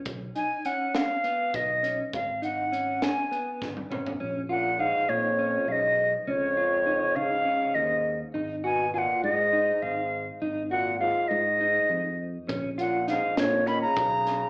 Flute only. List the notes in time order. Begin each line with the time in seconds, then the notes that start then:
0.36 G#5
0.66 F#5
0.95 F5
1.55 D#5
2.14 F5
2.44 F#5
3.03 G#5
4.51 F#5
4.80 F5
5.09 C#5
5.68 D#5 F5
6.27 C#5 D#5
7.16 F5
7.75 D#5
8.65 G#5
8.94 G#5
8.98 F#5
9.24 D#5
9.82 F5
10.71 F#5
11.00 F5
11.28 D#5
12.80 F#5
13.09 F5
13.38 C#5
13.67 B5
13.82 A#5